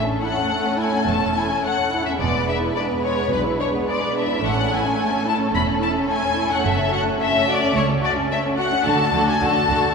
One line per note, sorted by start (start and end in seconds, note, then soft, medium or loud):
0.00 0.39 A1 soft
0.00 0.39 A2 soft
0.00 2.16 A3 soft
0.00 2.16 C#4 soft
0.00 2.15 A4 soft
0.07 0.22 C#4 soft
0.21 0.36 E4 soft
0.21 0.78 F#5 soft
0.35 0.50 C#4 soft
0.50 0.64 A3 soft
0.65 0.79 C#4 soft
0.79 0.93 E4 soft
0.79 1.07 G#5 soft
0.93 1.07 C#4 soft
1.07 1.52 E1 soft
1.07 1.52 E2 soft
1.07 1.20 A3 soft
1.07 1.36 A5 soft
1.22 1.36 C#4 soft
1.35 1.50 E4 soft
1.35 1.64 G#5 soft
1.50 1.64 C#4 soft
1.64 1.78 A3 soft
1.64 2.05 F#5 soft
1.78 1.92 C#4 soft
1.92 2.06 E4 soft
2.05 2.20 C#4 soft
2.05 2.11 E5 soft
2.19 2.64 E1 soft
2.19 2.64 E2 soft
2.19 4.39 G#3 soft
2.19 2.32 G#3 soft
2.19 4.39 B3 soft
2.19 4.39 B4 soft
2.19 2.47 D5 soft
2.35 2.48 B3 soft
2.48 2.62 D4 soft
2.48 2.56 E5 soft
2.62 2.75 E4 soft
2.75 2.89 D4 soft
2.75 2.84 D5 soft
2.89 3.03 B3 soft
3.03 3.18 G#3 soft
3.03 3.31 C#5 soft
3.18 3.31 B3 soft
3.31 3.76 B1 soft
3.31 3.75 B2 soft
3.31 3.45 D4 soft
3.31 3.40 B4 soft
3.46 3.60 E4 soft
3.60 3.74 D4 soft
3.60 3.68 C#5 soft
3.74 3.88 B3 soft
3.88 4.02 G#3 soft
3.88 4.15 D5 soft
4.02 4.16 B3 soft
4.16 4.30 D4 soft
4.16 4.44 E5 soft
4.31 4.44 E4 soft
4.43 4.87 A1 soft
4.43 4.87 A2 soft
4.43 8.84 A3 soft
4.43 4.56 A3 soft
4.43 8.81 C#4 soft
4.43 8.82 A4 soft
4.43 4.72 F#5 soft
4.57 4.71 C#4 soft
4.71 4.85 E4 soft
4.71 5.27 G#5 soft
4.85 4.98 C#4 soft
4.97 5.12 A3 soft
5.11 5.26 C#4 soft
5.25 5.39 E4 soft
5.25 5.35 A5 soft
5.39 5.53 C#4 soft
5.52 5.97 E1 soft
5.52 5.97 E2 soft
5.52 5.66 A3 soft
5.52 5.63 B5 soft
5.66 5.81 C#4 soft
5.80 5.95 E4 soft
5.80 5.90 A5 soft
5.94 6.09 C#4 soft
6.08 6.23 A3 soft
6.08 6.50 G#5 soft
6.22 6.37 C#4 soft
6.36 6.50 E4 soft
6.50 6.64 C#4 soft
6.50 6.66 F#5 soft
6.64 7.08 F#1 soft
6.64 7.08 F#2 soft
6.64 6.77 A3 soft
6.64 6.93 E5 soft
6.77 6.92 C#4 soft
6.91 7.05 F#4 soft
6.91 7.01 F#5 soft
7.05 7.19 C#4 soft
7.20 7.34 A3 soft
7.20 7.47 E5 soft
7.33 7.47 C#4 soft
7.48 7.62 F#4 soft
7.48 7.76 D5 soft
7.62 7.76 C#4 soft
7.75 8.19 C#2 soft
7.75 7.88 A3 soft
7.75 7.83 C#5 soft
7.89 8.03 C#4 soft
8.03 8.17 F#4 soft
8.03 8.12 D5 soft
8.17 8.31 C#4 soft
8.31 8.45 A3 soft
8.31 8.39 E5 soft
8.44 8.58 C#4 soft
8.58 8.72 F#4 soft
8.58 8.85 F#5 medium
8.72 8.86 C#4 soft
8.85 8.93 D2 soft
8.85 8.93 D3 soft
8.85 9.12 A3 soft
8.85 9.12 D4 soft
8.85 9.12 F#4 soft
8.85 9.12 A4 soft
8.85 9.27 A5 medium
9.13 9.21 D2 soft
9.13 9.21 D3 soft
9.13 9.39 A3 soft
9.13 9.39 D4 soft
9.13 9.40 F#4 soft
9.13 9.40 A4 soft
9.28 9.41 G#5 medium
9.40 9.49 D2 soft
9.40 9.49 D3 soft
9.40 9.66 A3 soft
9.40 9.66 D4 soft
9.40 9.67 F#4 soft
9.40 9.67 A4 soft
9.40 9.95 A5 medium
9.68 9.77 D2 soft
9.68 9.76 D3 soft
9.68 9.95 A3 soft
9.68 9.93 D4 soft
9.68 9.95 F#4 soft
9.68 9.95 A4 soft